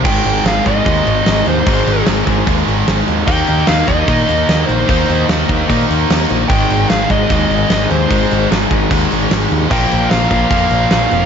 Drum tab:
CC |xxxxxxxx|xxxxxxxx|xxxxxxxx|xxxxxxxx|
SD |--o---o-|--o---o-|--o---o-|--o---o-|
BD |o--oo---|o--oo---|o--oo---|o--oo---|

CC |xxxxxxxx|xxxxxxxx|xxxxxxxx|
SD |--o---o-|--o---o-|--o---o-|
BD |o--oo---|o--oo---|o--oo---|